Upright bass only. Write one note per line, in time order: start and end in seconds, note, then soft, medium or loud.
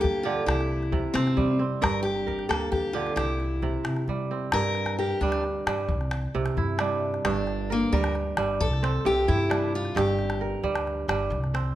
0.00 0.38 D2 medium
0.46 1.05 C2 medium
1.15 1.73 C3 medium
1.81 2.40 G1 medium
2.50 3.08 D2 medium
3.16 3.75 C2 medium
3.84 4.43 C3 medium
4.53 5.11 G2 medium
5.21 5.60 D2 medium
5.66 5.90 G2 medium
5.89 6.28 C2 medium
6.34 6.54 C2 medium
6.58 7.15 G2 medium
7.25 7.83 G1 medium
7.92 8.31 D2 loud
8.38 8.63 G1 medium
8.61 8.99 C2 loud
9.05 9.25 C2 medium
9.29 9.87 G2 loud
9.95 10.54 G1 loud
10.64 11.03 D2 medium
11.08 11.32 G1 medium
11.30 11.70 C2 medium